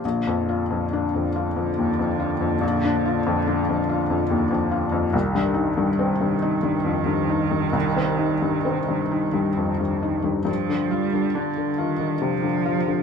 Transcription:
<<
  \new Staff \with { instrumentName = "Cello" } { \clef bass \time 3/4 \key bes \major \tempo 4 = 70 d2.~ | d2. | ees2.~ | ees2~ ees8. r16 |
f8 g8 d8 ees8 f4 | }
  \new Staff \with { instrumentName = "Felt piano" } { \clef bass \time 3/4 \key bes \major bes,,16 f,16 f'16 f,16 d'16 f,16 f'16 f,16 ees,16 f,16 f'16 f,16 | bes,,16 d'16 f'16 f,16 d'16 f,16 f'16 f,16 ees,16 f,16 f'16 f,16 | c,16 g,16 ees'16 g,16 c'16 g,16 ees'16 g,16 f,16 g,16 ees'16 g,16 | c,16 c'16 ees'16 g,16 c'16 g,16 ees'16 g,16 f,16 g,16 ees'16 g,16 |
g,16 d16 f'16 d16 d'16 d16 f'16 d16 c16 d16 f'16 d16 | }
>>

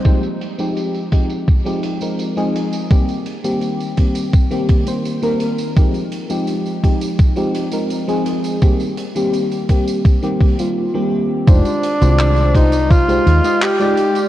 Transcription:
<<
  \new Staff \with { instrumentName = "Tenor saxophone" } { \time 4/4 \key f \dorian \tempo 4 = 84 r1 | r1 | r1 | r1 |
d'4. ees'8 f'4 g'4 | }
  \new Staff \with { instrumentName = "FM electric piano" } { \time 4/4 \key f \dorian <f aes c' ees' g'>16 r8 <f aes c' ees' g'>8. <f aes c' ees' g'>8. <f aes c' ees' g'>8 <f aes c' ees' bes'>8 <f aes c' ees' aes'>8. | <ees g bes c' g'>16 r8 <ees g bes c' g'>8. <ees g bes c' g'>8. <ees g bes c' g'>8 <ees g bes c' c''>8 <ees g bes c' bes'>8. | <f aes c' ees' g'>16 r8 <f aes c' ees' g'>8. <f aes c' ees' g'>8. <f aes c' ees' g'>8 <f aes c' ees' bes'>8 <f aes c' ees' aes'>8. | <ees g bes c' g'>16 r8 <ees g bes c' g'>8. <ees g bes c' g'>8. <ees g bes c' g'>8 <ees g bes c' f'>8 <ees g bes c' g'>8. |
<aes ees' f' g' c''>16 r8 <ees aes f' g' c''>8. <aes ees' f' g' c''>8. <aes ees' f' g' c''>8 <aes ees' f' g' ees''>8 <aes ees' f' g' d''>8. | }
  \new Staff \with { instrumentName = "Fretless electric bass" } { \clef bass \time 4/4 \key f \dorian r1 | r1 | r1 | r1 |
f,,16 r8 c,4.~ c,16 ees,16 r4 r16 | }
  \new DrumStaff \with { instrumentName = "Drums" } \drummode { \time 4/4 <hh bd tamb>16 <hh tamb>16 hh16 <hh tamb>16 <hh tamb>16 <hh tamb>16 <hh bd>16 <hh tamb>16 <hh bd tamb>16 <hh tamb>16 hh16 <hh tamb>16 <hh tamb>16 <hh tamb>16 hh16 <hh tamb>16 | <hh bd tamb>16 <hh tamb>16 hh16 <hh tamb>16 <hh tamb>16 <hh tamb>16 <hh bd>16 <hh tamb>16 <hh bd tamb>16 <hh tamb>16 <hh bd>16 <hh tamb>16 <hh tamb>16 <hh tamb>16 hh16 <hh tamb>16 | <hh bd tamb>16 <hh tamb>16 hh16 <hh tamb>16 <hh tamb>16 <hh tamb>16 <hh bd>16 <hh tamb>16 <hh bd tamb>16 <hh tamb>16 hh16 <hh tamb>16 <hh tamb>16 <hh tamb>16 hh16 <hh tamb>16 | <hh bd tamb>16 <hh tamb>16 hh16 <hh tamb>16 <hh tamb>16 <hh tamb>16 <hh bd>16 <hh tamb>16 <hh bd tamb>16 <hh tamb>16 <hh bd>16 <hh tamb>16 r4 |
<hh bd tamb>16 <hh tamb>16 hh16 <hh tamb>16 <hc hh tamb>16 <hh tamb>16 <hh bd>16 <hh tamb>16 <hh bd tamb>16 <hh tamb>16 hh16 <hh tamb>16 <hc hh tamb>16 <hh tamb>16 hh16 <hh tamb>16 | }
>>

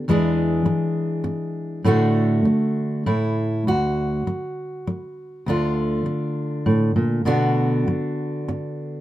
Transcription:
\new Staff \with { instrumentName = "Steel-string acoustic guitar" } { \clef bass \time 3/4 \key d \major \tempo 4 = 100 << { <e gis d' gis'>2. | <d a d' fis'>2 e'4 | fis'2. | <d d' f'>2. |
<d b d' fis'>2. | } \\ { e,4 r2 | a,4 r4 a,4 | d,4 r2 | d,4 r4 a,8 bes,8 |
b,4 r2 | } >> }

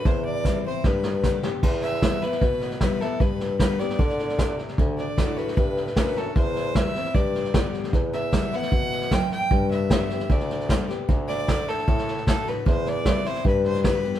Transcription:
<<
  \new Staff \with { instrumentName = "Fiddle" } { \time 4/4 \key e \minor \tempo 4 = 152 c''8 d''4 c''8 b'4. r8 | r8 e''4 b'4. b'8 a'8 | b'4 b'8 d''2 r8 | r8 d''4 b'4. b'8 a'8 |
c''4 e''4 d''4. r8 | r8 e''4 fis''4. g''8 g''8~ | g''8 e''4. d''4. r8 | r8 d''4 a'4. a'8 b'8 |
c''8 d''4 c''8 b'8 c''8 b'4 | }
  \new Staff \with { instrumentName = "Steel-string acoustic guitar" } { \time 4/4 \key e \minor << { r4 <e g c' e'>8 <c' e'>8 r4 <d g b g'>8 <b g'>8 | r4 <e g b e'>8 <b e'>8 r4 <e g b e'>8 <b e'>8 | r4 <d g b g'>8 <b g'>8 r2 | r4 <d a d' fis'>8 <d' fis'>8 r4 <d a d' fis'>8 <d' fis'>8 |
r4 <e g c' e'>8 <c' e'>8 r4 <d g b g'>4 | r4 <e g b e'>8 <b e'>8 r2 | r4 <d g b g'>8 <b g'>8 r4 <d g b g'>8 <b g'>8 | r4 <d a d' fis'>4 r4 <d a d' fis'>8 <d' fis'>8 |
r4 <e g c' e'>8 <c' e'>8 r4 <d g b g'>8 <b g'>8 | } \\ { e,2 g,2 | e,2 b,2 | g,2 b,4 c4 | d2 a,2 |
e,2 g,2 | e,2 e,4 fis,4 | g,2 d2 | d2 a,2 |
e,2 g,2 | } >> }
  \new Staff \with { instrumentName = "Bassoon" } { \clef bass \time 4/4 \key e \minor e,2 g,2 | e,2 b,4. r8 | g,2 d2 | d,4 a,4 g,4 fis,4 |
e,2 g,4. r8 | e,2 b,2 | g,2 d,2 | d,2 a,4. r8 |
e,2 g,2 | }
  \new DrumStaff \with { instrumentName = "Drums" } \drummode { \time 4/4 <bd sn>4 <hhp bd sn>4 <bd sn>8 sn8 <hhp bd sn>8 sn8 | <cymc bd sn>8 sn8 <hhp bd sn>8 sn16 sn16 <bd sn>8 sn16 sn16 <hhp bd sn>8 sn8 | <bd sn>8 sn8 <hhp bd sn>8 sn16 sn16 <bd sn>16 sn16 sn16 sn16 <hhp bd sn>8 sn16 sn16 | <bd sn>8 sn8 <hhp bd sn>8 sn16 sn16 <bd sn>8 sn16 sn16 <hhp bd sn>8 sn8 |
<bd sn>8 sn8 <hhp bd sn>8 sn16 sn16 <bd sn>8 sn16 sn16 <hhp bd sn>8 sn16 sn16 | <bd sn>8 sn8 <hhp bd sn>8 sn16 sn16 <bd sn>8 sn16 sn16 <hhp bd sn>8 sn8 | <bd sn>8 sn8 <hhp bd sn>8 sn16 sn16 <bd sn>16 sn16 sn16 sn16 <hhp bd sn>8 sn8 | <bd sn>8 sn8 <hhp bd sn>8 sn16 sn16 <bd sn>16 sn16 sn16 sn16 <hhp bd sn>8 sn8 |
<bd sn>8 sn8 <hhp bd sn>8 sn16 sn16 <bd sn>8 sn16 sn16 <hhp bd sn>8 sn16 sn16 | }
>>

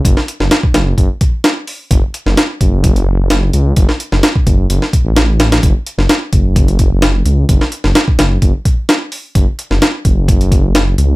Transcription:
<<
  \new Staff \with { instrumentName = "Detuned saw bass" } { \clef bass \time 4/4 \key fis \minor \tempo 4 = 129 fis,,16 r8 fis,,16 r8 fis,,8 fis,,16 r4. r16 | fis,,16 r8 fis,,16 r8 fis,,2 cis,8 | fis,,16 r8 fis,,16 r8 fis,,8 fis,,16 r8 a,,4~ a,,16 | fis,,16 r8 fis,,16 r8 fis,,2 cis,8 |
fis,,16 r8 fis,,16 r8 fis,,8 fis,,16 r4. r16 | fis,,16 r8 fis,,16 r8 fis,,2 cis,8 | }
  \new DrumStaff \with { instrumentName = "Drums" } \drummode { \time 4/4 <hh bd>16 sn16 hh16 sn16 <hh sn>16 bd16 <hh sn>8 <hh bd>8 <hh bd>8 <hh sn>8 hho8 | <hh bd>8 hh16 sn16 <hh sn>8 <hh bd>8 <hh bd>16 hh8. <hh sn>8 hh8 | <hh bd>16 sn16 hh16 sn16 <hh sn>16 bd16 <hh bd>8 hh16 sn16 <hh bd>8 <hh sn>8 <hh sn>16 <hh sn>16 | <hh bd>8 hh16 sn16 <hh sn>8 <hh bd>8 <hh bd>16 hh16 <hh bd>8 <hh sn>8 hh8 |
<hh bd>16 sn16 hh16 sn16 <hh sn>16 bd16 <hh sn>8 <hh bd>8 <hh bd>8 <hh sn>8 hho8 | <hh bd>8 hh16 sn16 <hh sn>8 <hh bd>8 <hh bd>16 hh16 <hh bd>8 <hh sn>8 hh8 | }
>>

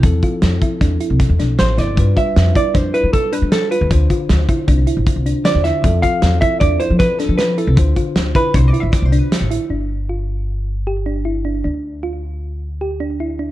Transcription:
<<
  \new Staff \with { instrumentName = "Hollow-body jazz guitar" } { \time 5/4 \key g \mixolydian \tempo 4 = 155 r1 c''8 d''8~ | d''8 e''4 d''8 c''8 b'8 a'8 b'8 a'8 b'8 | r1 d''8 e''8~ | e''8 f''4 e''8 d''8 c''8 b'8 a'8 b'8 a'8 |
r4. b'8 \tuplet 3/2 { c''8 d''8 e''8 d''8 c''8 b'8 } a'4 | r1 r4 | r1 r4 | }
  \new Staff \with { instrumentName = "Synth arpeggio sound" } { \time 5/4 \key g \mixolydian r8 f'4 e'8 d'8 e'4 d'4 e'8 | r8 f'4 e'8 d'8 e'4 d'4 f'8 | r8 f'4 e'8 d'8 e'4 d'4 e'8 | r8 f'4 e'8 d'8 e'4 d'4 e'8 |
r8 f'4 e'8 d'8 e'4 d'4 e'8 | d'4 f'4 r4 g'8 d'8 e'8 d'8 | d'4 f'4 r4 g'8 d'8 e'8 d'8 | }
  \new Staff \with { instrumentName = "Tine electric piano" } { \time 5/4 \key g \mixolydian <f c' e' a'>1~ <f c' e' a'>4 | <g d' f' b'>1~ <g d' f' b'>4 | <d d' f' c''>1 <d d' f' c''>4 | <f c' f' a'>1~ <f c' f' a'>4 |
<d d' f' c''>1~ <d d' f' c''>4 | r1 r4 | r1 r4 | }
  \new Staff \with { instrumentName = "Upright bass" } { \clef bass \time 5/4 \key g \mixolydian e,8 r8 f,8 r8 e,8 r16 c,16 r16 e,16 b,,8 a,,8 g,,8 | g,8 r8 f,8 r8 f,8 r16 g8 r8 g4 d,16 | d,8 r8 d,8 r8 c,8 r16 a,,16 r16 c,8 r8 e,8 r16 | f,8 r8 e,8 r8 e,8 r16 f8 r8 f4 c,16 |
d,8 r8 d,8 r8 c,8 r16 a,,16 r16 c,8 r8 a,,8 r16 | g,,1~ g,,4 | d,1~ d,4 | }
  \new DrumStaff \with { instrumentName = "Drums" } \drummode { \time 5/4 <hh bd>8 <hh bd>8 <hh sn>8 <hh bd>8 <hh bd sn>8 hh8 <hh bd sn>8 <hh sn>8 <hh sn>8 <hh sn>8 | <hh bd>8 <hh bd>8 <hh sn>8 <hh bd>8 <hh bd sn>8 hh8 <hh bd>8 hh8 <hh sn>8 hh8 | <hh bd>8 <hh bd>8 <hh sn>8 <hh bd>8 <hh bd>8 hh8 <hh bd>8 hh8 <hh sn>8 <hh sn>8 | <hh bd>8 <hh bd>8 <hh sn>8 <hh bd>8 <hh bd>8 hh8 <hh bd sn>8 <hh sn>8 <hh sn>8 hh8 |
<hh bd>8 <hh bd>8 <hh sn>8 <hh bd>8 <hh bd sn>8 hh8 <hh bd sn>8 hh8 <hh sn>8 hh8 | r4 r4 r4 r4 r4 | r4 r4 r4 r4 r4 | }
>>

